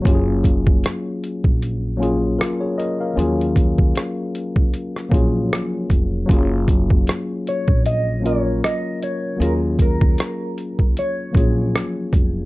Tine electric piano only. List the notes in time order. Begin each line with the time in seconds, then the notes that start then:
0.02 F#3 A#3 C#4
0.06 F4 G4
0.15 G#4
1.97 F#3 A#3 C#4
2.02 F4 G#4
2.39 F4 A#4
2.61 G#4 C#5
2.78 A#4 D#5
3.01 A#4 F5
3.13 F3 A#3 C#4
3.18 F#3 F4 G#4
5.09 F3 A#3 C#4
5.13 F#3 F4 G#4
6.26 F#3 A#3 C#4
6.31 F4 G#4
8.20 F#3 A#3 C#4
8.25 F4 A#4
9.36 F#3 A#3 C#4
9.42 F4 G#4
11.31 F3 A#3 C#4
11.36 F#3 F4 G#4